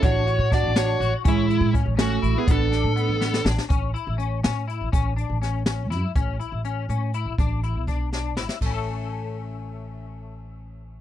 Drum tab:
RD |----------|----------|----------|----------|
HH |x-x-x-x-x-|x-x-x-x-x-|x-x-x-----|x-x-x-x-x-|
SD |----o-o---|------o---|--o---oooo|------o---|
BD |o---o-----|o---o-----|o---------|o---------|

RD |----------|----------|----------|x---------|
HH |x-x-x-x-x-|x-x-x-x-x-|x-x-x-----|----------|
SD |----o-o-o-|----------|------o-oo|----------|
BD |o---------|o---------|o---o-----|o---------|

RD |----------|
HH |----------|
SD |----------|
BD |----------|